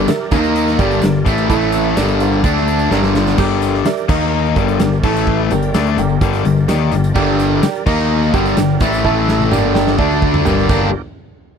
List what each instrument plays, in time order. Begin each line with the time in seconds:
Already playing: tonewheel organ G4 A#4 D5
0.08 reed electric piano G4 A#4 E5, muted picked electric bass stroke, muted distorted electric guitar stroke, muted overdriven electric guitar stroke, snare, closed hi-hat, tambourine
0.31 picked electric bass D#2, overdriven electric guitar D#3 A#3 D#4, tonewheel organ D#4 A#4 D#5, reed electric piano D#4 A#4 D#5, kick, closed hi-hat, tambourine
0.44 closed hi-hat
0.56 closed hi-hat
0.67 snare, closed hi-hat, tambourine
0.79 picked electric bass G1, overdriven electric guitar G2 D3 G3, reed electric piano G4 A#4 D5, tonewheel organ G4 A#4 D5, kick, closed hi-hat, tambourine
0.91 closed hi-hat, tambourine
1.02 picked electric bass G1, overdriven electric guitar G2 D3, snare, closed hi-hat, tambourine
1.14 tambourine
1.25 picked electric bass A1, overdriven electric guitar A2 E3 A3, kick, closed hi-hat, tambourine
1.38 tambourine
1.49 picked electric bass A1, overdriven electric guitar A2 E3 A3, tonewheel organ E4 A4 E5, reed electric piano E4 A4 E5, kick, closed hi-hat, tambourine
1.61 tambourine
1.72 closed hi-hat, tambourine
1.84 tambourine
1.96 picked electric bass G1, overdriven electric guitar G2 D3 G3, reed electric piano G4 A#4 D5, tonewheel organ G4 A#4 D5, snare, closed hi-hat, tambourine
2.08 closed hi-hat
2.20 reed electric piano G4 A#4 C5 F5, closed hi-hat, tambourine
2.32 tambourine
2.43 picked electric bass D2, overdriven electric guitar D3 A3 D4, reed electric piano D4 A4 D5 G5, tonewheel organ D4 A4 D5, kick, closed hi-hat, tambourine
2.56 snare
2.68 reed electric piano A5, closed hi-hat, tambourine
2.79 closed hi-hat, tambourine
2.90 picked electric bass G1, overdriven electric guitar G2 D3 G3, reed electric piano G4 A#4 D5 A#5, tonewheel organ G4 A#4 D5, snare, tambourine
3.03 reed electric piano C6, snare
3.15 snare, tambourine
3.27 snare, tambourine
3.38 picked electric bass G1, overdriven electric guitar G2 D3 G3, reed electric piano G4 A#4 D5 G5, tonewheel organ G4 A#4 D5, kick, crash
3.62 closed hi-hat, tambourine
3.74 snare
3.85 reed electric piano G4 A#4 D5 E5, muted picked electric bass stroke, muted overdriven electric guitar stroke, snare, closed hi-hat, tambourine
3.97 closed hi-hat
4.09 picked electric bass D#2, overdriven electric guitar D#3 A#3 D#4, reed electric piano D#4 A#4 D#5 A#5, tonewheel organ D#4 A#4 D#5, kick, tambourine, crash
4.22 tambourine
4.45 tambourine
4.56 picked electric bass G1, overdriven electric guitar G2 D3 G3, reed electric piano G4 A#4 D5 G5, tonewheel organ G4 A#4 D5, kick, closed hi-hat, tambourine
4.68 closed hi-hat, tambourine
4.80 picked electric bass G1, overdriven electric guitar G2 D3, snare, closed hi-hat, tambourine
4.93 tambourine
5.03 picked electric bass A1, overdriven electric guitar A2 E3 A3, reed electric piano E4 A4 E5 A5, tonewheel organ E4 A4 E5, kick, crash
5.17 tambourine
5.27 kick
5.51 picked electric bass G1, overdriven electric guitar G2 D3, reed electric piano G4 A#4 D5 G5, tonewheel organ G4 A#4 D5, closed hi-hat, tambourine
5.62 closed hi-hat
5.74 picked electric bass D2, overdriven electric guitar D3 A3 D4, snare, closed hi-hat, tambourine
5.86 closed hi-hat
5.98 picked electric bass G1, overdriven electric guitar G2 D3, reed electric piano G4 A#4 D5 G5, closed hi-hat, tambourine
6.09 tambourine
6.21 picked electric bass G1, overdriven electric guitar G2 D3 G3, reed electric piano G4 A#4 D5 G5, kick, closed hi-hat
6.33 snare, closed hi-hat, tambourine
6.45 picked electric bass G1, overdriven electric guitar G2 D3, closed hi-hat, tambourine
6.57 tambourine
6.68 picked electric bass D#2, overdriven electric guitar D#3 A#3 D#4, reed electric piano G4 A#4 D5 G5, snare, closed hi-hat, tambourine
6.92 picked electric bass G1, overdriven electric guitar G2 D3, closed hi-hat, tambourine
7.04 closed hi-hat, tambourine
7.15 picked electric bass G1, overdriven electric guitar G2 D3 G3, reed electric piano G4 A#4 D5 G5, kick, crash
7.39 snare, closed hi-hat, tambourine
7.63 reed electric piano G4 A#4 D5 G5, muted overdriven electric guitar stroke, muted picked electric bass stroke, muted distorted electric guitar stroke, snare, closed hi-hat, tambourine
7.75 closed hi-hat
7.86 picked electric bass D#2, overdriven electric guitar D#3 A#3 D#4, tonewheel organ D#4 A#4 D#5, reed electric piano D#4 A#4 D#5 A#5, kick, tambourine, crash
7.99 tambourine
8.23 tambourine
8.33 picked electric bass G1, overdriven electric guitar G2 D3 G3, tonewheel organ G4 A#4 D5, reed electric piano G4 A#4 D5 G5, kick, closed hi-hat, tambourine
8.46 closed hi-hat, tambourine
8.57 picked electric bass G1, overdriven electric guitar G2 D3, snare, closed hi-hat, tambourine
8.80 picked electric bass A1, overdriven electric guitar A2 E3 A3, kick, closed hi-hat, tambourine
8.92 closed hi-hat, tambourine
9.05 picked electric bass A1, overdriven electric guitar A2 E3 A3, reed electric piano E4 A4 E5 A5, tonewheel organ E4 A4 E5, kick, tambourine
9.29 snare, tambourine
9.40 high tom, tambourine
9.51 picked electric bass G1, overdriven electric guitar G2 D3 G3, reed electric piano G4 A#4 D5 G5, tonewheel organ G4 A#4 D5, mid tom, tambourine
9.74 reed electric piano G4 A#4 D5 G5, snare, tambourine
9.87 snare
9.99 picked electric bass D2, overdriven electric guitar D3 A3 D4, reed electric piano D4 A4 D5 A5, tonewheel organ D4 A4 D5, kick, tambourine
10.11 tambourine
10.22 kick
10.34 mid tom, tambourine
10.45 picked electric bass G1, overdriven electric guitar G2 D3 G3, reed electric piano G4 A#4 D5 G5, tonewheel organ G4 A#4 D5, floor tom, tambourine
10.59 tambourine
10.69 picked electric bass G1, overdriven electric guitar G2 D3 G3 A#3 D4, tonewheel organ G4 A#4 D5, distorted electric guitar G4, reed electric piano A#4 D5 G5, kick, crash, tambourine